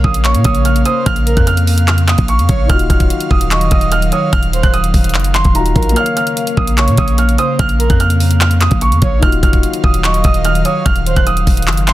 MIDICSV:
0, 0, Header, 1, 7, 480
1, 0, Start_track
1, 0, Key_signature, -5, "minor"
1, 0, Tempo, 408163
1, 1250, Time_signature, 4, 2, 24, 8
1, 14030, End_track
2, 0, Start_track
2, 0, Title_t, "Grand piano"
2, 0, Program_c, 0, 0
2, 48, Note_on_c, 0, 87, 83
2, 235, Note_off_c, 0, 87, 0
2, 288, Note_on_c, 0, 85, 86
2, 475, Note_off_c, 0, 85, 0
2, 528, Note_on_c, 0, 87, 87
2, 715, Note_off_c, 0, 87, 0
2, 767, Note_on_c, 0, 89, 76
2, 954, Note_off_c, 0, 89, 0
2, 1007, Note_on_c, 0, 87, 87
2, 1194, Note_off_c, 0, 87, 0
2, 1249, Note_on_c, 0, 89, 108
2, 1587, Note_off_c, 0, 89, 0
2, 1608, Note_on_c, 0, 90, 74
2, 1702, Note_off_c, 0, 90, 0
2, 1728, Note_on_c, 0, 89, 90
2, 2180, Note_off_c, 0, 89, 0
2, 2210, Note_on_c, 0, 89, 92
2, 2396, Note_off_c, 0, 89, 0
2, 2446, Note_on_c, 0, 87, 79
2, 2634, Note_off_c, 0, 87, 0
2, 2690, Note_on_c, 0, 85, 84
2, 3141, Note_off_c, 0, 85, 0
2, 3171, Note_on_c, 0, 89, 103
2, 3356, Note_off_c, 0, 89, 0
2, 3409, Note_on_c, 0, 89, 81
2, 3860, Note_off_c, 0, 89, 0
2, 3891, Note_on_c, 0, 87, 81
2, 4077, Note_off_c, 0, 87, 0
2, 4130, Note_on_c, 0, 85, 87
2, 4316, Note_off_c, 0, 85, 0
2, 4373, Note_on_c, 0, 87, 84
2, 4558, Note_off_c, 0, 87, 0
2, 4610, Note_on_c, 0, 89, 90
2, 4796, Note_off_c, 0, 89, 0
2, 4851, Note_on_c, 0, 87, 75
2, 5037, Note_off_c, 0, 87, 0
2, 5089, Note_on_c, 0, 89, 108
2, 5428, Note_off_c, 0, 89, 0
2, 5449, Note_on_c, 0, 90, 94
2, 5542, Note_off_c, 0, 90, 0
2, 5570, Note_on_c, 0, 87, 93
2, 6246, Note_off_c, 0, 87, 0
2, 6287, Note_on_c, 0, 84, 100
2, 6474, Note_off_c, 0, 84, 0
2, 6531, Note_on_c, 0, 82, 87
2, 6981, Note_off_c, 0, 82, 0
2, 7013, Note_on_c, 0, 89, 104
2, 7198, Note_off_c, 0, 89, 0
2, 7252, Note_on_c, 0, 89, 81
2, 7702, Note_off_c, 0, 89, 0
2, 7730, Note_on_c, 0, 87, 81
2, 7916, Note_off_c, 0, 87, 0
2, 7970, Note_on_c, 0, 85, 86
2, 8156, Note_off_c, 0, 85, 0
2, 8210, Note_on_c, 0, 87, 86
2, 8396, Note_off_c, 0, 87, 0
2, 8448, Note_on_c, 0, 89, 77
2, 8635, Note_off_c, 0, 89, 0
2, 8688, Note_on_c, 0, 87, 93
2, 8875, Note_off_c, 0, 87, 0
2, 8930, Note_on_c, 0, 89, 107
2, 9268, Note_off_c, 0, 89, 0
2, 9290, Note_on_c, 0, 90, 75
2, 9383, Note_off_c, 0, 90, 0
2, 9411, Note_on_c, 0, 89, 90
2, 9861, Note_off_c, 0, 89, 0
2, 9891, Note_on_c, 0, 89, 92
2, 10077, Note_off_c, 0, 89, 0
2, 10128, Note_on_c, 0, 87, 78
2, 10315, Note_off_c, 0, 87, 0
2, 10370, Note_on_c, 0, 85, 87
2, 10821, Note_off_c, 0, 85, 0
2, 10850, Note_on_c, 0, 89, 106
2, 11036, Note_off_c, 0, 89, 0
2, 11089, Note_on_c, 0, 89, 84
2, 11541, Note_off_c, 0, 89, 0
2, 11571, Note_on_c, 0, 87, 82
2, 11757, Note_off_c, 0, 87, 0
2, 11808, Note_on_c, 0, 85, 91
2, 11995, Note_off_c, 0, 85, 0
2, 12052, Note_on_c, 0, 87, 85
2, 12237, Note_off_c, 0, 87, 0
2, 12290, Note_on_c, 0, 89, 90
2, 12476, Note_off_c, 0, 89, 0
2, 12530, Note_on_c, 0, 87, 75
2, 12716, Note_off_c, 0, 87, 0
2, 12767, Note_on_c, 0, 89, 106
2, 13106, Note_off_c, 0, 89, 0
2, 13129, Note_on_c, 0, 90, 94
2, 13223, Note_off_c, 0, 90, 0
2, 13250, Note_on_c, 0, 87, 92
2, 13927, Note_off_c, 0, 87, 0
2, 13967, Note_on_c, 0, 84, 101
2, 14030, Note_off_c, 0, 84, 0
2, 14030, End_track
3, 0, Start_track
3, 0, Title_t, "Soft synth lead"
3, 0, Program_c, 1, 80
3, 290, Note_on_c, 1, 73, 88
3, 967, Note_off_c, 1, 73, 0
3, 1007, Note_on_c, 1, 72, 83
3, 1236, Note_off_c, 1, 72, 0
3, 1483, Note_on_c, 1, 70, 88
3, 1714, Note_off_c, 1, 70, 0
3, 2934, Note_on_c, 1, 73, 93
3, 3160, Note_off_c, 1, 73, 0
3, 4128, Note_on_c, 1, 75, 91
3, 4806, Note_off_c, 1, 75, 0
3, 4845, Note_on_c, 1, 73, 90
3, 5075, Note_off_c, 1, 73, 0
3, 5332, Note_on_c, 1, 72, 81
3, 5559, Note_off_c, 1, 72, 0
3, 6767, Note_on_c, 1, 70, 83
3, 6996, Note_off_c, 1, 70, 0
3, 7969, Note_on_c, 1, 73, 85
3, 8646, Note_off_c, 1, 73, 0
3, 8686, Note_on_c, 1, 72, 86
3, 8916, Note_off_c, 1, 72, 0
3, 9162, Note_on_c, 1, 70, 90
3, 9393, Note_off_c, 1, 70, 0
3, 10613, Note_on_c, 1, 73, 94
3, 10840, Note_off_c, 1, 73, 0
3, 11808, Note_on_c, 1, 75, 92
3, 12486, Note_off_c, 1, 75, 0
3, 12524, Note_on_c, 1, 73, 91
3, 12755, Note_off_c, 1, 73, 0
3, 13012, Note_on_c, 1, 72, 80
3, 13239, Note_off_c, 1, 72, 0
3, 14030, End_track
4, 0, Start_track
4, 0, Title_t, "Grand piano"
4, 0, Program_c, 2, 0
4, 0, Control_c, 2, 64, 127
4, 0, Note_on_c, 2, 58, 69
4, 0, Note_on_c, 2, 70, 64
4, 0, Note_on_c, 2, 73, 67
4, 0, Note_on_c, 2, 77, 73
4, 3098, Note_off_c, 2, 58, 0
4, 3114, Note_off_c, 2, 70, 0
4, 3119, Note_on_c, 2, 51, 69
4, 3130, Note_off_c, 2, 73, 0
4, 3146, Note_off_c, 2, 77, 0
4, 3151, Note_on_c, 2, 63, 64
4, 3183, Control_c, 2, 64, 0
4, 3183, Note_on_c, 2, 65, 64
4, 3215, Note_on_c, 2, 66, 85
4, 3424, Control_c, 2, 64, 127
4, 6457, Note_off_c, 2, 51, 0
4, 6473, Note_off_c, 2, 63, 0
4, 6489, Note_off_c, 2, 65, 0
4, 6505, Note_off_c, 2, 66, 0
4, 6508, Note_on_c, 2, 51, 49
4, 6524, Note_on_c, 2, 63, 43
4, 6540, Note_on_c, 2, 65, 47
4, 6556, Note_on_c, 2, 66, 55
4, 6960, Note_on_c, 2, 58, 71
4, 6992, Note_on_c, 2, 70, 64
4, 6999, Note_off_c, 2, 51, 0
4, 7007, Note_off_c, 2, 63, 0
4, 7015, Note_off_c, 2, 65, 0
4, 7023, Note_off_c, 2, 66, 0
4, 7024, Control_c, 2, 64, 0
4, 7024, Note_on_c, 2, 73, 66
4, 7056, Note_on_c, 2, 77, 73
4, 7227, Control_c, 2, 64, 127
4, 10778, Note_off_c, 2, 58, 0
4, 10794, Note_off_c, 2, 70, 0
4, 10798, Note_on_c, 2, 51, 69
4, 10810, Note_off_c, 2, 73, 0
4, 10826, Note_off_c, 2, 77, 0
4, 10830, Note_on_c, 2, 63, 63
4, 10862, Note_on_c, 2, 65, 65
4, 10863, Control_c, 2, 64, 0
4, 10894, Note_on_c, 2, 66, 81
4, 11034, Control_c, 2, 64, 127
4, 14030, Note_off_c, 2, 51, 0
4, 14030, Note_off_c, 2, 63, 0
4, 14030, Note_off_c, 2, 65, 0
4, 14030, Note_off_c, 2, 66, 0
4, 14030, End_track
5, 0, Start_track
5, 0, Title_t, "Analog synth pad"
5, 0, Program_c, 3, 89
5, 0, Note_on_c, 3, 49, 85
5, 0, Note_on_c, 3, 58, 78
5, 0, Note_on_c, 3, 77, 97
5, 3131, Note_off_c, 3, 49, 0
5, 3131, Note_off_c, 3, 58, 0
5, 3169, Note_on_c, 3, 51, 86
5, 3169, Note_on_c, 3, 54, 80
5, 6971, Note_off_c, 3, 51, 0
5, 6971, Note_off_c, 3, 54, 0
5, 7010, Note_on_c, 3, 58, 80
5, 7011, Note_on_c, 3, 49, 88
5, 10802, Note_off_c, 3, 77, 0
5, 10812, Note_off_c, 3, 49, 0
5, 10812, Note_off_c, 3, 58, 0
5, 10849, Note_on_c, 3, 51, 86
5, 10849, Note_on_c, 3, 54, 79
5, 10849, Note_on_c, 3, 77, 95
5, 14030, Note_off_c, 3, 51, 0
5, 14030, Note_off_c, 3, 54, 0
5, 14030, Note_off_c, 3, 77, 0
5, 14030, End_track
6, 0, Start_track
6, 0, Title_t, "808-style bass"
6, 0, Program_c, 4, 38
6, 49, Note_on_c, 4, 34, 109
6, 408, Note_on_c, 4, 46, 100
6, 426, Note_off_c, 4, 34, 0
6, 523, Note_off_c, 4, 46, 0
6, 530, Note_on_c, 4, 34, 102
6, 990, Note_off_c, 4, 34, 0
6, 1250, Note_on_c, 4, 34, 115
6, 1595, Note_off_c, 4, 34, 0
6, 1610, Note_on_c, 4, 41, 104
6, 2531, Note_off_c, 4, 41, 0
6, 2569, Note_on_c, 4, 34, 113
6, 2810, Note_on_c, 4, 41, 99
6, 2827, Note_off_c, 4, 34, 0
6, 2924, Note_off_c, 4, 41, 0
6, 2930, Note_on_c, 4, 34, 105
6, 3160, Note_off_c, 4, 34, 0
6, 3170, Note_on_c, 4, 27, 115
6, 3400, Note_off_c, 4, 27, 0
6, 3409, Note_on_c, 4, 27, 103
6, 3640, Note_off_c, 4, 27, 0
6, 3889, Note_on_c, 4, 27, 106
6, 4350, Note_off_c, 4, 27, 0
6, 4369, Note_on_c, 4, 27, 105
6, 4830, Note_off_c, 4, 27, 0
6, 5089, Note_on_c, 4, 27, 113
6, 5435, Note_off_c, 4, 27, 0
6, 5450, Note_on_c, 4, 27, 101
6, 5796, Note_off_c, 4, 27, 0
6, 5810, Note_on_c, 4, 27, 109
6, 6049, Note_on_c, 4, 30, 102
6, 6067, Note_off_c, 4, 27, 0
6, 6391, Note_off_c, 4, 30, 0
6, 6410, Note_on_c, 4, 27, 103
6, 6755, Note_off_c, 4, 27, 0
6, 6770, Note_on_c, 4, 34, 106
6, 7000, Note_off_c, 4, 34, 0
6, 7730, Note_on_c, 4, 34, 107
6, 8089, Note_on_c, 4, 46, 99
6, 8107, Note_off_c, 4, 34, 0
6, 8204, Note_off_c, 4, 46, 0
6, 8209, Note_on_c, 4, 34, 102
6, 8670, Note_off_c, 4, 34, 0
6, 8929, Note_on_c, 4, 34, 118
6, 9275, Note_off_c, 4, 34, 0
6, 9289, Note_on_c, 4, 41, 101
6, 10211, Note_off_c, 4, 41, 0
6, 10248, Note_on_c, 4, 34, 108
6, 10489, Note_on_c, 4, 41, 100
6, 10507, Note_off_c, 4, 34, 0
6, 10603, Note_off_c, 4, 41, 0
6, 10609, Note_on_c, 4, 34, 105
6, 10840, Note_off_c, 4, 34, 0
6, 10850, Note_on_c, 4, 27, 117
6, 11080, Note_off_c, 4, 27, 0
6, 11088, Note_on_c, 4, 27, 105
6, 11319, Note_off_c, 4, 27, 0
6, 11569, Note_on_c, 4, 27, 107
6, 12030, Note_off_c, 4, 27, 0
6, 12050, Note_on_c, 4, 27, 104
6, 12510, Note_off_c, 4, 27, 0
6, 12770, Note_on_c, 4, 27, 115
6, 13115, Note_off_c, 4, 27, 0
6, 13130, Note_on_c, 4, 27, 103
6, 13475, Note_off_c, 4, 27, 0
6, 13489, Note_on_c, 4, 27, 109
6, 13731, Note_on_c, 4, 30, 99
6, 13749, Note_off_c, 4, 27, 0
6, 14030, Note_off_c, 4, 30, 0
6, 14030, End_track
7, 0, Start_track
7, 0, Title_t, "Drums"
7, 48, Note_on_c, 9, 36, 86
7, 166, Note_off_c, 9, 36, 0
7, 169, Note_on_c, 9, 42, 77
7, 286, Note_off_c, 9, 42, 0
7, 289, Note_on_c, 9, 39, 121
7, 289, Note_on_c, 9, 42, 83
7, 406, Note_off_c, 9, 42, 0
7, 406, Note_on_c, 9, 42, 71
7, 407, Note_off_c, 9, 39, 0
7, 523, Note_off_c, 9, 42, 0
7, 523, Note_on_c, 9, 42, 80
7, 529, Note_on_c, 9, 36, 98
7, 640, Note_off_c, 9, 42, 0
7, 642, Note_on_c, 9, 42, 55
7, 647, Note_off_c, 9, 36, 0
7, 760, Note_off_c, 9, 42, 0
7, 765, Note_on_c, 9, 42, 77
7, 883, Note_off_c, 9, 42, 0
7, 891, Note_on_c, 9, 42, 50
7, 1005, Note_off_c, 9, 42, 0
7, 1005, Note_on_c, 9, 42, 69
7, 1123, Note_off_c, 9, 42, 0
7, 1249, Note_on_c, 9, 42, 89
7, 1250, Note_on_c, 9, 36, 118
7, 1365, Note_off_c, 9, 42, 0
7, 1365, Note_on_c, 9, 42, 56
7, 1367, Note_off_c, 9, 36, 0
7, 1483, Note_off_c, 9, 42, 0
7, 1492, Note_on_c, 9, 42, 82
7, 1609, Note_off_c, 9, 42, 0
7, 1609, Note_on_c, 9, 42, 54
7, 1610, Note_on_c, 9, 36, 101
7, 1727, Note_off_c, 9, 36, 0
7, 1727, Note_off_c, 9, 42, 0
7, 1729, Note_on_c, 9, 42, 81
7, 1847, Note_off_c, 9, 42, 0
7, 1849, Note_on_c, 9, 42, 62
7, 1967, Note_off_c, 9, 42, 0
7, 1969, Note_on_c, 9, 46, 86
7, 2086, Note_off_c, 9, 46, 0
7, 2089, Note_on_c, 9, 42, 77
7, 2207, Note_off_c, 9, 42, 0
7, 2210, Note_on_c, 9, 39, 119
7, 2210, Note_on_c, 9, 42, 85
7, 2327, Note_off_c, 9, 42, 0
7, 2327, Note_on_c, 9, 42, 70
7, 2328, Note_off_c, 9, 39, 0
7, 2443, Note_off_c, 9, 42, 0
7, 2443, Note_on_c, 9, 42, 83
7, 2450, Note_on_c, 9, 39, 97
7, 2561, Note_off_c, 9, 42, 0
7, 2563, Note_on_c, 9, 42, 55
7, 2568, Note_off_c, 9, 39, 0
7, 2569, Note_on_c, 9, 36, 96
7, 2680, Note_off_c, 9, 42, 0
7, 2685, Note_on_c, 9, 42, 80
7, 2687, Note_off_c, 9, 36, 0
7, 2803, Note_off_c, 9, 42, 0
7, 2812, Note_on_c, 9, 42, 51
7, 2926, Note_off_c, 9, 42, 0
7, 2926, Note_on_c, 9, 42, 68
7, 2930, Note_on_c, 9, 36, 98
7, 3043, Note_off_c, 9, 42, 0
7, 3047, Note_off_c, 9, 36, 0
7, 3170, Note_on_c, 9, 36, 119
7, 3170, Note_on_c, 9, 42, 89
7, 3285, Note_off_c, 9, 42, 0
7, 3285, Note_on_c, 9, 42, 60
7, 3288, Note_off_c, 9, 36, 0
7, 3403, Note_off_c, 9, 42, 0
7, 3409, Note_on_c, 9, 36, 98
7, 3412, Note_on_c, 9, 42, 79
7, 3527, Note_off_c, 9, 36, 0
7, 3529, Note_off_c, 9, 42, 0
7, 3529, Note_on_c, 9, 42, 58
7, 3530, Note_on_c, 9, 36, 102
7, 3647, Note_off_c, 9, 36, 0
7, 3647, Note_off_c, 9, 42, 0
7, 3649, Note_on_c, 9, 42, 83
7, 3767, Note_off_c, 9, 42, 0
7, 3769, Note_on_c, 9, 42, 62
7, 3886, Note_off_c, 9, 42, 0
7, 3889, Note_on_c, 9, 36, 90
7, 4007, Note_off_c, 9, 36, 0
7, 4009, Note_on_c, 9, 42, 77
7, 4127, Note_off_c, 9, 42, 0
7, 4130, Note_on_c, 9, 39, 121
7, 4130, Note_on_c, 9, 42, 84
7, 4247, Note_off_c, 9, 42, 0
7, 4247, Note_on_c, 9, 42, 66
7, 4248, Note_off_c, 9, 39, 0
7, 4363, Note_off_c, 9, 42, 0
7, 4363, Note_on_c, 9, 42, 83
7, 4370, Note_on_c, 9, 36, 100
7, 4480, Note_off_c, 9, 42, 0
7, 4483, Note_on_c, 9, 42, 55
7, 4487, Note_off_c, 9, 36, 0
7, 4600, Note_off_c, 9, 42, 0
7, 4605, Note_on_c, 9, 42, 79
7, 4723, Note_off_c, 9, 42, 0
7, 4731, Note_on_c, 9, 42, 50
7, 4845, Note_off_c, 9, 42, 0
7, 4845, Note_on_c, 9, 42, 64
7, 4963, Note_off_c, 9, 42, 0
7, 5089, Note_on_c, 9, 42, 91
7, 5090, Note_on_c, 9, 36, 114
7, 5205, Note_off_c, 9, 42, 0
7, 5205, Note_on_c, 9, 42, 56
7, 5207, Note_off_c, 9, 36, 0
7, 5323, Note_off_c, 9, 42, 0
7, 5332, Note_on_c, 9, 42, 83
7, 5450, Note_off_c, 9, 42, 0
7, 5450, Note_on_c, 9, 36, 102
7, 5450, Note_on_c, 9, 42, 58
7, 5567, Note_off_c, 9, 42, 0
7, 5568, Note_off_c, 9, 36, 0
7, 5570, Note_on_c, 9, 42, 85
7, 5687, Note_off_c, 9, 42, 0
7, 5690, Note_on_c, 9, 42, 63
7, 5807, Note_off_c, 9, 42, 0
7, 5809, Note_on_c, 9, 36, 87
7, 5810, Note_on_c, 9, 46, 84
7, 5927, Note_off_c, 9, 36, 0
7, 5928, Note_off_c, 9, 46, 0
7, 5931, Note_on_c, 9, 42, 66
7, 5991, Note_off_c, 9, 42, 0
7, 5991, Note_on_c, 9, 42, 64
7, 6050, Note_off_c, 9, 42, 0
7, 6050, Note_on_c, 9, 42, 65
7, 6051, Note_on_c, 9, 39, 121
7, 6110, Note_off_c, 9, 42, 0
7, 6110, Note_on_c, 9, 42, 63
7, 6167, Note_off_c, 9, 42, 0
7, 6167, Note_on_c, 9, 42, 69
7, 6168, Note_off_c, 9, 39, 0
7, 6283, Note_off_c, 9, 42, 0
7, 6283, Note_on_c, 9, 42, 81
7, 6291, Note_on_c, 9, 39, 99
7, 6401, Note_off_c, 9, 42, 0
7, 6404, Note_on_c, 9, 42, 53
7, 6408, Note_off_c, 9, 39, 0
7, 6409, Note_on_c, 9, 36, 94
7, 6521, Note_off_c, 9, 42, 0
7, 6526, Note_on_c, 9, 42, 80
7, 6527, Note_off_c, 9, 36, 0
7, 6644, Note_off_c, 9, 42, 0
7, 6652, Note_on_c, 9, 42, 51
7, 6769, Note_off_c, 9, 42, 0
7, 6770, Note_on_c, 9, 36, 97
7, 6770, Note_on_c, 9, 42, 41
7, 6851, Note_off_c, 9, 42, 0
7, 6851, Note_on_c, 9, 42, 56
7, 6887, Note_off_c, 9, 36, 0
7, 6931, Note_off_c, 9, 42, 0
7, 6931, Note_on_c, 9, 42, 67
7, 7011, Note_off_c, 9, 42, 0
7, 7011, Note_on_c, 9, 42, 89
7, 7126, Note_off_c, 9, 42, 0
7, 7126, Note_on_c, 9, 42, 57
7, 7244, Note_off_c, 9, 42, 0
7, 7253, Note_on_c, 9, 42, 81
7, 7371, Note_off_c, 9, 42, 0
7, 7371, Note_on_c, 9, 42, 55
7, 7489, Note_off_c, 9, 42, 0
7, 7490, Note_on_c, 9, 42, 83
7, 7608, Note_off_c, 9, 42, 0
7, 7610, Note_on_c, 9, 42, 61
7, 7728, Note_off_c, 9, 42, 0
7, 7729, Note_on_c, 9, 36, 84
7, 7847, Note_off_c, 9, 36, 0
7, 7849, Note_on_c, 9, 42, 75
7, 7967, Note_off_c, 9, 42, 0
7, 7970, Note_on_c, 9, 39, 123
7, 7970, Note_on_c, 9, 42, 81
7, 8087, Note_off_c, 9, 42, 0
7, 8087, Note_on_c, 9, 42, 70
7, 8088, Note_off_c, 9, 39, 0
7, 8202, Note_off_c, 9, 42, 0
7, 8202, Note_on_c, 9, 42, 81
7, 8209, Note_on_c, 9, 36, 96
7, 8320, Note_off_c, 9, 42, 0
7, 8322, Note_on_c, 9, 42, 55
7, 8327, Note_off_c, 9, 36, 0
7, 8440, Note_off_c, 9, 42, 0
7, 8445, Note_on_c, 9, 42, 82
7, 8562, Note_off_c, 9, 42, 0
7, 8570, Note_on_c, 9, 42, 49
7, 8684, Note_off_c, 9, 42, 0
7, 8684, Note_on_c, 9, 42, 68
7, 8802, Note_off_c, 9, 42, 0
7, 8928, Note_on_c, 9, 42, 91
7, 8929, Note_on_c, 9, 36, 119
7, 9044, Note_off_c, 9, 42, 0
7, 9044, Note_on_c, 9, 42, 58
7, 9047, Note_off_c, 9, 36, 0
7, 9162, Note_off_c, 9, 42, 0
7, 9172, Note_on_c, 9, 42, 81
7, 9288, Note_off_c, 9, 42, 0
7, 9288, Note_on_c, 9, 42, 57
7, 9289, Note_on_c, 9, 36, 105
7, 9406, Note_off_c, 9, 42, 0
7, 9407, Note_off_c, 9, 36, 0
7, 9408, Note_on_c, 9, 42, 85
7, 9525, Note_off_c, 9, 42, 0
7, 9527, Note_on_c, 9, 42, 59
7, 9645, Note_off_c, 9, 42, 0
7, 9648, Note_on_c, 9, 46, 84
7, 9765, Note_off_c, 9, 46, 0
7, 9768, Note_on_c, 9, 42, 77
7, 9886, Note_off_c, 9, 42, 0
7, 9889, Note_on_c, 9, 39, 121
7, 9889, Note_on_c, 9, 42, 83
7, 10005, Note_off_c, 9, 42, 0
7, 10005, Note_on_c, 9, 42, 69
7, 10007, Note_off_c, 9, 39, 0
7, 10122, Note_off_c, 9, 42, 0
7, 10122, Note_on_c, 9, 42, 81
7, 10129, Note_on_c, 9, 39, 101
7, 10239, Note_off_c, 9, 42, 0
7, 10241, Note_on_c, 9, 42, 55
7, 10247, Note_off_c, 9, 39, 0
7, 10248, Note_on_c, 9, 36, 93
7, 10359, Note_off_c, 9, 42, 0
7, 10365, Note_on_c, 9, 42, 79
7, 10366, Note_off_c, 9, 36, 0
7, 10482, Note_off_c, 9, 42, 0
7, 10490, Note_on_c, 9, 42, 50
7, 10605, Note_off_c, 9, 42, 0
7, 10605, Note_on_c, 9, 42, 67
7, 10609, Note_on_c, 9, 36, 98
7, 10722, Note_off_c, 9, 42, 0
7, 10727, Note_off_c, 9, 36, 0
7, 10849, Note_on_c, 9, 36, 120
7, 10849, Note_on_c, 9, 42, 90
7, 10964, Note_off_c, 9, 42, 0
7, 10964, Note_on_c, 9, 42, 59
7, 10967, Note_off_c, 9, 36, 0
7, 11082, Note_off_c, 9, 42, 0
7, 11089, Note_on_c, 9, 36, 96
7, 11092, Note_on_c, 9, 42, 84
7, 11206, Note_off_c, 9, 36, 0
7, 11209, Note_off_c, 9, 42, 0
7, 11209, Note_on_c, 9, 36, 100
7, 11209, Note_on_c, 9, 42, 57
7, 11326, Note_off_c, 9, 42, 0
7, 11327, Note_off_c, 9, 36, 0
7, 11328, Note_on_c, 9, 42, 81
7, 11446, Note_off_c, 9, 42, 0
7, 11448, Note_on_c, 9, 42, 59
7, 11566, Note_off_c, 9, 42, 0
7, 11569, Note_on_c, 9, 36, 87
7, 11686, Note_off_c, 9, 36, 0
7, 11689, Note_on_c, 9, 42, 75
7, 11806, Note_off_c, 9, 42, 0
7, 11810, Note_on_c, 9, 39, 120
7, 11810, Note_on_c, 9, 42, 80
7, 11927, Note_off_c, 9, 42, 0
7, 11927, Note_on_c, 9, 42, 68
7, 11928, Note_off_c, 9, 39, 0
7, 12043, Note_off_c, 9, 42, 0
7, 12043, Note_on_c, 9, 42, 79
7, 12049, Note_on_c, 9, 36, 101
7, 12160, Note_off_c, 9, 42, 0
7, 12162, Note_on_c, 9, 42, 55
7, 12167, Note_off_c, 9, 36, 0
7, 12280, Note_off_c, 9, 42, 0
7, 12284, Note_on_c, 9, 42, 80
7, 12402, Note_off_c, 9, 42, 0
7, 12410, Note_on_c, 9, 42, 51
7, 12525, Note_off_c, 9, 42, 0
7, 12525, Note_on_c, 9, 42, 64
7, 12642, Note_off_c, 9, 42, 0
7, 12769, Note_on_c, 9, 42, 88
7, 12770, Note_on_c, 9, 36, 117
7, 12884, Note_off_c, 9, 42, 0
7, 12884, Note_on_c, 9, 42, 56
7, 12887, Note_off_c, 9, 36, 0
7, 13002, Note_off_c, 9, 42, 0
7, 13012, Note_on_c, 9, 42, 79
7, 13129, Note_off_c, 9, 42, 0
7, 13129, Note_on_c, 9, 42, 56
7, 13130, Note_on_c, 9, 36, 103
7, 13247, Note_off_c, 9, 42, 0
7, 13248, Note_off_c, 9, 36, 0
7, 13249, Note_on_c, 9, 42, 83
7, 13367, Note_off_c, 9, 42, 0
7, 13369, Note_on_c, 9, 42, 61
7, 13487, Note_off_c, 9, 42, 0
7, 13489, Note_on_c, 9, 36, 89
7, 13489, Note_on_c, 9, 46, 82
7, 13607, Note_off_c, 9, 36, 0
7, 13607, Note_off_c, 9, 46, 0
7, 13609, Note_on_c, 9, 42, 63
7, 13670, Note_off_c, 9, 42, 0
7, 13670, Note_on_c, 9, 42, 65
7, 13729, Note_off_c, 9, 42, 0
7, 13729, Note_on_c, 9, 42, 65
7, 13730, Note_on_c, 9, 39, 124
7, 13789, Note_off_c, 9, 42, 0
7, 13789, Note_on_c, 9, 42, 64
7, 13846, Note_off_c, 9, 42, 0
7, 13846, Note_on_c, 9, 42, 71
7, 13847, Note_off_c, 9, 39, 0
7, 13962, Note_off_c, 9, 42, 0
7, 13962, Note_on_c, 9, 42, 82
7, 13969, Note_on_c, 9, 39, 96
7, 14030, Note_off_c, 9, 39, 0
7, 14030, Note_off_c, 9, 42, 0
7, 14030, End_track
0, 0, End_of_file